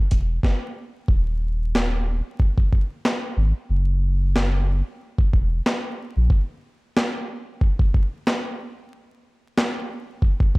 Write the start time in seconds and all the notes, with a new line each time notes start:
0.11 E1, kick, closed hi-hat
0.43 kick, snare
1.08 D#1, kick
1.75 snare, clap
2.40 kick
2.58 kick
2.73 kick
3.05 snare, clap
3.37 G#1
3.69 F#1
4.36 snare, clap
5.18 kick
5.33 E1, kick
5.66 snare, clap
6.16 A#1
6.30 kick
6.97 snare, clap
7.61 kick
7.79 kick
7.94 kick
8.27 snare, clap
9.57 snare, clap
10.22 kick
10.40 kick
10.55 kick